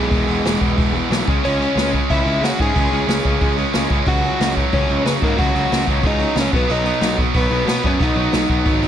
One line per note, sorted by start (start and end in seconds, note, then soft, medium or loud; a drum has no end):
0.00 0.11 E3 medium
0.00 0.90 G#3 medium
0.00 0.95 G#4 medium
0.10 0.22 E1 medium
0.10 0.27 E2 loud
0.10 0.26 B2 medium
0.10 0.26 E3 medium
0.10 kick loud
0.10 open hi-hat medium
0.26 0.39 E1 medium
0.26 0.43 E2 medium
0.26 0.43 B2 medium
0.26 0.45 E3 medium
0.26 open hi-hat medium
0.44 0.55 E1 medium
0.44 0.59 E2 medium
0.44 0.58 B2 loud
0.44 0.59 E3 medium
0.44 snare loud
0.44 open hi-hat medium
0.59 0.72 E1 medium
0.59 0.75 E2 medium
0.59 0.76 B2 medium
0.59 0.78 E3 loud
0.59 kick medium
0.59 open hi-hat medium
0.76 0.99 E1 medium
0.76 0.94 E2 medium
0.76 0.94 B2 medium
0.76 0.94 E3 medium
0.76 kick loud
0.76 open hi-hat medium
0.94 1.09 E2 medium
0.94 1.10 B2 medium
0.94 1.11 E3 medium
0.94 open hi-hat medium
1.10 1.21 B1 medium
1.10 1.26 E2 medium
1.10 1.26 B2 medium
1.10 1.26 E3 loud
1.10 snare loud
1.10 open hi-hat medium
1.26 1.38 C#2 medium
1.26 1.43 C#3 medium
1.26 1.43 G#3 medium
1.26 1.42 C#4 medium
1.26 kick loud
1.26 open hi-hat medium
1.43 1.66 C#2 medium
1.43 1.59 C#3 medium
1.43 1.59 G#3 medium
1.43 1.60 C#4 loud
1.43 1.91 C#4 medium
1.43 1.91 C#5 medium
1.43 open hi-hat medium
1.59 1.75 C#3 medium
1.59 1.75 G#3 medium
1.59 1.74 C#4 medium
1.59 open hi-hat medium
1.75 1.97 C#2 medium
1.75 1.92 C#3 medium
1.75 1.92 G#3 loud
1.75 1.92 C#4 medium
1.75 snare loud
1.75 open hi-hat medium
1.92 2.11 C#3 loud
1.92 2.09 G#3 loud
1.92 2.10 C#4 medium
1.92 kick medium
1.92 open hi-hat soft
2.10 2.21 C#2 medium
2.10 2.24 C#3 medium
2.10 2.24 G#3 medium
2.10 2.24 C#4 medium
2.10 2.42 E4 medium
2.10 2.44 E5 medium
2.10 kick medium
2.10 open hi-hat medium
2.25 2.36 C#2 medium
2.25 2.42 C#3 medium
2.25 2.41 G#3 medium
2.25 2.41 C#4 medium
2.25 open hi-hat medium
2.41 2.52 C#3 loud
2.41 2.58 C#3 medium
2.41 2.57 G#3 medium
2.41 2.59 C#4 loud
2.41 2.59 F#4 medium
2.41 2.60 F#5 medium
2.41 snare loud
2.41 open hi-hat medium
2.58 2.70 G#2 medium
2.58 2.77 C#3 medium
2.58 2.76 G#3 medium
2.58 2.75 C#4 medium
2.58 3.55 G#4 medium
2.58 3.56 G#5 medium
2.58 kick medium
2.58 open hi-hat medium
2.75 2.86 C#2 medium
2.75 2.91 C#3 medium
2.75 2.91 G#3 medium
2.75 2.92 C#4 loud
2.75 kick loud
2.75 open hi-hat medium
2.92 3.03 C#2 medium
2.92 3.09 C#3 medium
2.92 3.08 G#3 medium
2.92 3.08 C#4 medium
2.92 open hi-hat medium
3.07 3.18 C#2 medium
3.07 3.25 C#3 medium
3.07 3.25 G#3 medium
3.07 3.27 C#4 loud
3.07 snare loud
3.07 open hi-hat medium
3.25 3.35 C#2 medium
3.25 3.42 C#3 medium
3.25 3.41 G#3 medium
3.25 3.41 C#4 loud
3.25 kick medium
3.25 open hi-hat medium
3.41 3.62 C#2 medium
3.41 3.58 C#3 medium
3.41 3.57 G#3 medium
3.41 3.59 C#4 medium
3.41 kick loud
3.41 open hi-hat medium
3.57 3.75 C#3 medium
3.57 3.74 G#3 medium
3.57 3.74 C#4 medium
3.57 open hi-hat medium
3.73 3.85 C#2 medium
3.73 3.90 C#3 medium
3.73 3.90 G#3 medium
3.73 3.91 C#4 loud
3.73 snare loud
3.73 open hi-hat medium
3.90 4.01 C#2 medium
3.90 4.07 C#3 medium
3.90 4.07 G#3 medium
3.90 6.53 C#4 medium
3.90 kick medium
3.90 open hi-hat medium
4.06 4.28 C#2 medium
4.06 4.23 F#2 medium
4.06 4.23 C#3 medium
4.06 4.23 F#3 loud
4.06 4.54 F#4 medium
4.06 4.54 F#5 medium
4.06 kick loud
4.06 open hi-hat medium
4.23 4.38 F#2 medium
4.23 4.40 C#3 medium
4.23 4.41 F#3 medium
4.23 open hi-hat medium
4.39 4.61 C#2 medium
4.39 4.57 F#2 medium
4.39 4.56 C#3 loud
4.39 4.56 F#3 loud
4.39 snare loud
4.39 open hi-hat medium
4.56 4.72 F#2 medium
4.56 4.72 C#3 medium
4.56 4.74 F#3 loud
4.56 kick medium
4.56 open hi-hat medium
4.72 4.84 C#2 medium
4.72 4.90 F#2 medium
4.72 4.89 C#3 medium
4.72 4.90 F#3 medium
4.72 5.04 C#4 medium
4.72 5.04 C#5 medium
4.72 kick loud
4.72 open hi-hat medium
4.89 5.00 C#2 medium
4.89 5.05 F#2 medium
4.89 5.04 C#3 medium
4.89 5.06 F#3 loud
4.89 open hi-hat medium
5.04 5.23 F#2 medium
5.04 5.15 C#3 medium
5.04 5.22 C#3 medium
5.04 5.22 F#3 loud
5.04 5.11 B3 medium
5.04 5.11 B4 loud
5.04 snare loud
5.04 open hi-hat medium
5.22 5.38 F#2 medium
5.22 5.33 G#2 medium
5.22 5.38 C#3 medium
5.22 5.39 F#3 medium
5.22 5.38 A#3 medium
5.22 5.39 A#4 medium
5.22 kick medium
5.22 open hi-hat medium
5.37 5.49 C#2 medium
5.37 5.55 F#2 loud
5.37 5.54 C#3 loud
5.37 5.55 F#3 loud
5.37 5.83 F#4 medium
5.37 5.84 F#5 loud
5.37 kick loud
5.37 open hi-hat medium
5.54 5.65 C#2 medium
5.54 5.70 F#2 medium
5.54 5.70 C#3 medium
5.54 5.71 F#3 medium
5.54 open hi-hat medium
5.71 5.82 C#2 medium
5.71 5.87 F#2 medium
5.71 5.87 C#3 medium
5.71 5.87 F#3 medium
5.71 snare loud
5.71 open hi-hat medium
5.87 5.98 C#2 medium
5.87 6.03 F#2 medium
5.87 6.03 C#3 medium
5.87 6.04 F#3 medium
5.87 kick medium
5.87 open hi-hat medium
6.03 6.24 C#2 medium
6.03 6.20 F#2 medium
6.03 6.19 C#3 medium
6.03 6.20 F#3 medium
6.03 6.36 D#4 medium
6.03 kick loud
6.03 open hi-hat medium
6.07 6.39 D#5 medium
6.19 6.35 F#2 medium
6.19 6.36 C#3 medium
6.19 6.37 F#3 medium
6.19 open hi-hat medium
6.35 6.46 C#2 loud
6.35 6.52 F#2 medium
6.35 6.52 C#3 loud
6.35 6.52 F#3 loud
6.35 6.53 C#4 medium
6.35 snare loud
6.35 open hi-hat medium
6.40 6.53 C#5 medium
6.52 6.63 B1 medium
6.52 6.70 B2 medium
6.52 6.70 F#3 medium
6.52 6.70 B3 loud
6.52 6.69 B3 medium
6.52 kick loud
6.52 open hi-hat medium
6.56 6.72 B4 medium
6.69 6.91 B1 loud
6.69 6.84 B2 medium
6.69 6.85 F#3 medium
6.69 6.86 B3 medium
6.69 7.16 D#4 medium
6.69 7.16 D#5 loud
6.69 open hi-hat medium
6.85 7.03 B2 medium
6.85 7.01 F#3 medium
6.85 7.01 B3 medium
6.85 open hi-hat medium
7.01 7.23 B1 medium
7.01 7.17 B2 medium
7.01 7.17 F#3 medium
7.01 7.19 B3 loud
7.01 snare loud
7.01 open hi-hat medium
7.17 7.34 B2 loud
7.17 7.33 F#3 medium
7.17 7.32 B3 loud
7.17 kick medium
7.17 open hi-hat soft
7.34 7.45 B1 loud
7.34 7.50 B2 medium
7.34 7.50 F#3 medium
7.34 7.51 B3 loud
7.34 7.66 B3 medium
7.34 7.68 B4 medium
7.34 kick loud
7.34 open hi-hat medium
7.50 7.61 B1 medium
7.50 7.67 B2 medium
7.50 7.66 F#3 medium
7.50 7.66 B3 medium
7.50 open hi-hat medium
7.65 7.76 B2 medium
7.65 7.82 B2 medium
7.65 7.82 F#3 medium
7.65 7.83 B3 loud
7.65 7.84 B3 medium
7.65 snare loud
7.65 open hi-hat medium
7.69 7.86 B4 medium
7.83 7.95 F#2 loud
7.83 8.00 B2 medium
7.83 8.00 F#3 medium
7.83 7.99 B3 medium
7.83 8.00 C#4 medium
7.83 8.03 C#5 medium
7.83 kick medium
7.83 open hi-hat medium
8.00 8.11 B1 medium
8.00 8.15 B2 loud
8.00 8.15 F#3 loud
8.00 8.15 B3 loud
8.00 8.88 D#4 medium
8.00 8.88 D#5 medium
8.00 kick loud
8.00 open hi-hat medium
8.16 8.26 B1 medium
8.16 8.33 B2 medium
8.16 8.32 F#3 medium
8.16 8.32 B3 medium
8.16 open hi-hat medium
8.32 8.44 B1 loud
8.32 8.47 B2 medium
8.32 8.48 F#3 medium
8.32 8.49 B3 loud
8.32 snare loud
8.32 open hi-hat medium
8.48 8.60 B1 medium
8.48 8.65 B2 medium
8.48 8.65 F#3 loud
8.48 8.64 B3 loud
8.48 kick medium
8.48 open hi-hat medium
8.65 8.87 G#1 medium
8.65 8.81 B2 medium
8.65 8.82 F#3 medium
8.65 8.82 B3 medium
8.65 kick loud
8.65 open hi-hat medium
8.82 8.88 B2 loud
8.82 8.88 F#3 medium
8.82 8.88 B3 loud
8.82 open hi-hat medium